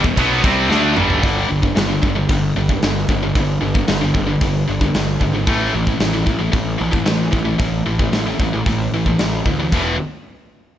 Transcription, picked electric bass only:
0.04 0.17 E1 medium
0.17 0.42 B1 medium
0.44 0.68 C2 loud
0.70 0.94 D2 loud
0.97 1.21 G1 medium
1.23 1.44 G1 medium
1.51 1.71 G1 medium
1.76 1.97 G1 medium
2.03 2.24 G1 medium
2.30 2.51 G1 medium
2.56 2.77 G1 medium
2.83 3.04 G1 medium
3.09 3.30 G1 medium
3.36 3.57 G1 medium
3.61 3.83 G1 medium
3.88 4.09 G1 medium
4.15 4.36 G1 medium
4.42 4.62 G1 medium
4.68 4.89 G1 medium
4.95 5.16 G1 medium
5.21 5.48 G#1 medium
5.48 5.69 A1 medium
5.74 5.95 A1 medium
6.01 6.22 A1 medium
6.27 6.48 A1 medium
6.53 6.75 A1 medium
6.81 7.02 A1 medium
7.07 7.28 A1 medium
7.33 7.54 A1 medium
7.60 7.81 A1 medium
7.86 8.07 A1 medium
8.12 8.34 A1 medium
8.40 8.61 A1 medium
8.66 8.88 A1 medium
8.93 9.14 A1 medium
9.19 9.41 A1 medium
9.46 9.67 D2 medium
9.73 9.97 E1 medium

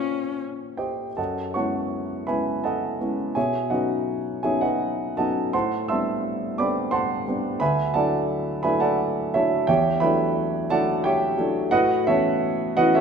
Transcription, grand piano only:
0.00 1.21 A#2 soft
0.00 1.20 A#3 soft
0.00 1.21 C4 soft
0.00 1.21 C#4 soft
0.00 1.20 F4 soft
0.77 1.15 G4 soft
0.77 1.15 C5 soft
0.77 1.15 D#5 soft
0.77 1.17 G5 medium
1.17 1.54 F#2 soft
1.17 1.53 A4 soft
1.17 1.53 D#5 soft
1.17 1.53 F#5 soft
1.17 1.54 A5 medium
1.54 2.24 G#3 soft
1.54 2.25 B3 soft
1.54 2.25 C#4 soft
1.54 2.25 E4 soft
1.54 2.24 C#5 soft
1.54 2.24 F#5 soft
1.54 2.24 A5 soft
1.54 2.28 C#6 medium
2.27 2.96 G#3 soft
2.27 2.96 B3 soft
2.27 2.96 C#4 soft
2.27 2.97 E4 soft
2.27 2.62 B4 soft
2.27 2.61 E5 soft
2.27 2.62 G#5 soft
2.27 2.64 B5 medium
2.64 3.31 A4 soft
2.64 3.32 D#5 soft
2.64 3.32 F#5 soft
2.64 3.35 A5 medium
3.01 3.32 G#3 soft
3.01 3.32 B3 soft
3.01 3.33 C#4 soft
3.01 3.33 E4 soft
3.35 3.70 B2 soft
3.35 3.69 G#4 soft
3.35 3.69 C#5 soft
3.35 3.69 E5 soft
3.35 3.71 G#5 medium
3.70 4.40 F#3 soft
3.70 4.40 B3 soft
3.70 4.40 C#4 soft
3.70 4.40 D#4 soft
3.70 4.40 F#4 soft
3.70 4.40 B4 soft
3.70 4.40 D#5 soft
3.70 4.43 F#5 soft
4.43 5.13 F#3 soft
4.43 5.13 B3 soft
4.43 5.13 C#4 soft
4.43 5.14 D#4 soft
4.43 4.61 G#4 soft
4.43 4.61 C#5 soft
4.43 4.61 E5 soft
4.43 4.62 G#5 medium
4.61 5.13 F#4 soft
4.61 5.13 B4 soft
4.61 5.13 D#5 soft
4.61 5.17 F#5 medium
5.17 5.50 F#3 soft
5.17 5.50 B3 soft
5.17 5.50 C#4 soft
5.17 5.51 D#4 soft
5.17 5.51 A4 soft
5.17 5.51 D#5 soft
5.17 5.51 F#5 soft
5.17 5.52 A5 medium
5.53 5.88 A2 soft
5.53 5.87 C5 medium
5.53 5.86 F#5 medium
5.53 5.86 A5 soft
5.53 5.88 C6 medium
5.88 6.55 G3 soft
5.88 6.55 B3 soft
5.88 6.55 C4 soft
5.88 6.56 D4 soft
5.88 6.55 E5 soft
5.88 6.55 A5 soft
5.88 6.55 C6 medium
5.88 6.58 E6 medium
6.58 7.23 G3 soft
6.58 7.23 B3 soft
6.58 7.24 C4 soft
6.58 7.24 D4 soft
6.58 6.91 D5 soft
6.58 6.91 G5 soft
6.58 6.91 B5 medium
6.58 6.93 D6 medium
6.91 7.56 C5 medium
6.91 7.56 F#5 medium
6.91 7.56 A5 medium
6.91 7.60 C6 medium
7.28 7.58 G3 soft
7.28 7.58 B3 soft
7.28 7.58 C4 soft
7.28 7.58 D4 soft
7.60 7.94 D2 medium
7.60 7.92 B4 medium
7.60 7.92 E5 medium
7.60 7.93 G#5 medium
7.60 7.94 B5 medium
7.94 8.60 F#3 soft
7.94 8.61 A3 soft
7.94 8.61 D4 soft
7.94 8.61 E4 soft
7.94 8.61 A4 medium
7.94 8.61 D5 soft
7.94 8.60 F#5 medium
7.94 8.64 A5 medium
8.63 9.30 F#3 soft
8.63 9.30 A3 soft
8.63 9.30 D4 soft
8.63 9.31 E4 soft
8.63 8.81 B4 medium
8.63 8.81 E5 medium
8.63 8.80 G#5 medium
8.63 8.81 B5 medium
8.80 9.30 A4 medium
8.80 9.30 D5 medium
8.80 9.30 F#5 medium
8.80 9.33 A5 medium
9.34 9.65 F#3 soft
9.34 9.65 A3 soft
9.34 9.65 D4 soft
9.34 9.66 E4 soft
9.34 9.66 A4 medium
9.34 9.66 C#5 medium
9.34 9.67 E5 medium
9.67 10.01 E2 medium
9.67 10.00 G4 medium
9.67 10.00 C#5 medium
9.67 9.99 E5 medium
9.67 10.00 G5 medium
10.00 10.66 F#3 soft
10.00 10.66 A3 soft
10.00 10.66 D4 soft
10.00 10.66 E4 soft
10.00 10.66 B4 medium
10.00 10.66 E5 medium
10.00 10.66 G5 medium
10.00 10.69 B5 medium
10.70 11.34 F#3 soft
10.70 11.34 A3 soft
10.70 11.35 D4 soft
10.70 11.35 E4 soft
10.70 11.02 A4 medium
10.70 11.02 D5 medium
10.70 11.02 F#5 medium
10.70 11.04 A5 medium
11.04 11.69 G4 medium
11.04 11.69 C#5 medium
11.04 11.69 E5 medium
11.04 11.72 G5 medium
11.38 11.69 F#3 soft
11.38 11.69 A3 soft
11.38 11.69 D4 soft
11.38 11.69 E4 medium
11.71 12.06 A2 medium
11.71 12.05 F#4 medium
11.71 12.05 B4 medium
11.71 12.05 D#5 medium
11.71 12.07 F#5 medium
12.07 12.73 E3 soft
12.07 12.73 B3 soft
12.07 12.74 C#4 soft
12.07 12.74 E4 soft
12.07 12.73 A4 medium
12.07 12.73 C#5 medium
12.07 12.77 E5 medium
12.77 13.01 E3 soft
12.77 13.01 B3 soft
12.77 13.01 C#4 soft
12.77 13.01 E4 medium
12.77 12.94 F#4 medium
12.77 12.93 B4 medium
12.77 12.93 D#5 medium
12.77 12.94 F#5 medium
12.95 13.01 A4 medium
12.95 13.01 C#5 medium
12.95 13.01 E5 medium

